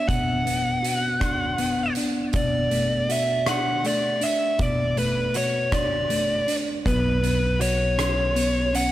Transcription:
0.00 0.44 B3 soft
0.00 1.20 D4 soft
0.00 0.82 F#4 soft
0.07 1.96 B2 medium
0.07 1.93 F#5 medium
0.07 kick medium
0.07 closed hi-hat medium
0.45 1.57 B3 soft
0.45 closed hi-hat soft
0.82 3.09 F#4 soft
0.82 closed hi-hat soft
1.20 1.96 D4 soft
1.20 kick medium
1.20 cross-stick medium
1.20 closed hi-hat medium
1.58 2.34 B3 soft
1.58 closed hi-hat soft
1.95 3.45 D4 soft
1.95 closed hi-hat soft
2.33 4.23 B2 medium
2.33 3.13 D5 medium
2.33 kick medium
2.33 closed hi-hat medium
2.71 3.83 A3 soft
2.71 closed hi-hat soft
3.09 5.35 F#4 soft
3.09 3.49 E5 medium
3.09 closed hi-hat soft
3.46 4.20 D4 soft
3.46 3.87 F#5 medium
3.46 cross-stick medium
3.46 closed hi-hat medium
3.84 4.95 A3 soft
3.84 4.24 D5 medium
3.84 closed hi-hat soft
4.21 5.72 D4 medium
4.21 4.62 E5 medium
4.21 closed hi-hat soft
4.58 6.47 B2 soft
4.58 4.98 D5 medium
4.58 kick medium
4.58 closed hi-hat medium
4.97 6.09 A3 soft
4.97 5.37 B4 medium
4.97 closed hi-hat soft
5.34 7.59 F#4 soft
5.34 5.74 C#5 medium
5.34 closed hi-hat soft
5.72 6.46 D4 soft
5.72 6.54 D5 medium
5.72 kick medium
5.72 cross-stick medium
5.72 closed hi-hat medium
6.10 6.85 A3 soft
6.10 closed hi-hat soft
6.47 6.85 D4 soft
6.47 closed hi-hat soft
6.85 8.92 B1 medium
6.85 7.21 B3 medium
6.85 7.61 B4 medium
6.85 kick medium
6.85 closed hi-hat medium
7.22 8.34 B3 soft
7.22 closed hi-hat soft
7.59 8.92 F#4 soft
7.59 8.78 C#5 medium
7.59 closed hi-hat medium
7.98 8.72 C#4 medium
7.98 cross-stick medium
7.98 closed hi-hat medium
8.35 8.92 B3 soft
8.35 closed hi-hat soft
8.73 8.92 C#4 medium
8.73 8.92 F#5 medium
8.73 closed hi-hat soft

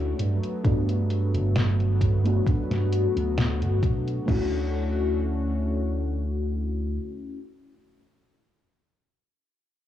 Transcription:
0.00 0.12 D2 medium
0.00 0.16 D3 medium
0.00 0.16 A3 medium
0.00 4.25 A3 medium
0.00 0.16 C#4 medium
0.00 0.17 C#4 medium
0.00 0.17 E4 medium
0.00 0.17 F#4 medium
0.19 0.38 G2 medium
0.19 4.24 F#3 medium
0.19 4.24 B3 medium
0.19 closed hi-hat medium
0.43 closed hi-hat soft
0.64 1.36 G2 medium
0.64 2.19 A3 medium
0.64 2.19 B3 medium
0.64 2.20 D4 medium
0.64 2.20 F#4 medium
0.64 kick loud
0.64 closed hi-hat medium
0.89 closed hi-hat soft
1.10 closed hi-hat medium
1.34 2.39 G1 medium
1.34 closed hi-hat soft
1.56 snare loud
1.56 closed hi-hat medium
1.80 closed hi-hat soft
2.01 4.26 F#4 medium
2.01 kick medium
2.01 closed hi-hat medium
2.24 4.22 A3 medium
2.24 4.23 B3 medium
2.24 4.23 D4 medium
2.24 4.24 F#4 medium
2.24 closed hi-hat soft
2.47 kick loud
2.47 closed hi-hat medium
2.70 3.05 G2 medium
2.70 snare soft
2.70 closed hi-hat soft
2.93 closed hi-hat medium
3.16 3.63 D2 medium
3.16 closed hi-hat soft
3.38 snare loud
3.38 closed hi-hat medium
3.61 3.78 G1 medium
3.61 closed hi-hat soft
3.83 4.19 B2 medium
3.83 kick medium
3.83 closed hi-hat medium
4.08 closed hi-hat soft
4.25 6.97 D2 medium
4.25 7.39 D3 medium
4.25 7.37 A3 medium
4.25 7.39 A3 medium
4.25 7.38 C#4 medium
4.25 7.39 C#4 medium
4.25 7.39 E4 medium
4.25 7.39 F#4 medium
4.25 kick medium
4.25 crash medium
4.30 7.41 F#4 medium

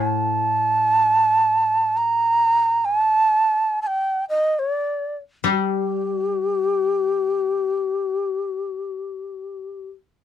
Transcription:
0.00 3.30 A2 soft
0.00 1.99 A5 loud
1.97 2.86 A#5 loud
2.85 2.98 G#5 loud
2.98 3.80 A5 loud
3.82 3.88 A5 medium
3.87 4.25 G5 medium
4.30 4.61 D#5 medium
4.59 4.70 C#5 medium
4.70 5.17 D5 medium
5.44 8.82 G3 medium
5.50 9.88 G4 medium

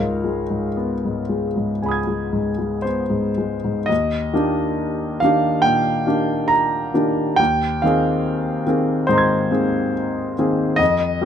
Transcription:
0.00 1.79 C#2 soft
0.00 0.41 G#2 soft
0.00 2.83 F4 soft
0.00 2.83 A#4 soft
0.00 2.83 C#5 soft
0.00 2.87 F5 soft
0.24 0.67 G#3 soft
0.50 0.93 G#2 soft
0.77 1.20 B3 soft
1.05 1.47 G#2 soft
1.29 1.72 G#3 soft
1.56 1.98 G#2 soft
1.82 3.86 C#2 soft
1.82 3.86 G#5 soft
1.82 3.88 B5 soft
1.88 3.89 D#6 soft
1.88 3.91 G#6 soft
2.07 2.50 G#3 soft
2.33 2.76 G#2 soft
2.58 3.02 G#3 soft
2.82 3.29 B3 soft
2.82 3.88 C5 soft
3.10 3.55 G#2 soft
3.38 3.80 G#3 soft
3.64 3.89 G#2 soft
3.86 4.33 D#2 soft
3.86 5.20 D#5 medium
4.33 5.17 D#3 soft
4.33 5.18 A#3 soft
4.33 5.18 D4 soft
4.33 5.18 G4 soft
5.20 5.61 D#3 soft
5.20 5.62 A#3 soft
5.20 5.62 D4 soft
5.20 5.64 F5 medium
5.24 5.62 G4 soft
5.62 6.06 A#2 soft
5.62 6.49 G5 medium
6.07 6.90 D#3 soft
6.07 6.91 A#3 soft
6.07 6.91 D4 soft
6.07 6.91 G4 soft
6.48 7.38 A#5 medium
6.94 7.35 D#3 soft
6.94 7.35 A#3 soft
6.94 7.35 D4 soft
6.94 7.35 G4 soft
7.36 7.81 D#2 soft
7.36 7.81 G5 medium
7.82 8.63 D#3 soft
7.82 8.64 A#3 soft
7.82 8.64 C4 soft
7.82 8.64 G#4 soft
7.82 9.08 F5 medium
8.67 9.04 D#3 soft
8.67 9.05 A#3 soft
8.67 9.05 C4 soft
8.67 9.05 G#4 soft
9.07 9.50 G#2 soft
9.07 9.93 C5 medium
9.07 10.75 D#5 soft
9.12 10.78 A#5 soft
9.12 10.79 C6 soft
9.18 10.81 G#6 soft
9.51 10.34 D#3 soft
9.51 10.33 A#3 soft
9.51 10.34 C4 soft
9.51 10.34 G#4 soft
10.39 10.77 D#3 soft
10.39 10.77 A#3 soft
10.39 10.77 C4 soft
10.39 10.77 G#4 soft
10.76 11.20 F2 soft
10.76 11.25 D#5 medium
11.21 11.25 G3 soft
11.21 11.25 A3 soft

